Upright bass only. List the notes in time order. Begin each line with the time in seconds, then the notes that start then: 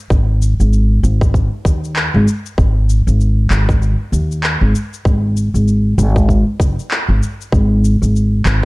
0.10 G#1
0.60 G#1
1.03 G#1
1.65 D#2
2.14 G#1
2.58 G#1
3.07 G#1
3.51 G#1
4.12 D#2
4.61 G#1
5.05 G#1
5.54 G#1
5.98 G#1
6.60 F#1
7.09 G#1
7.52 G#1
8.02 G#1
8.45 G#1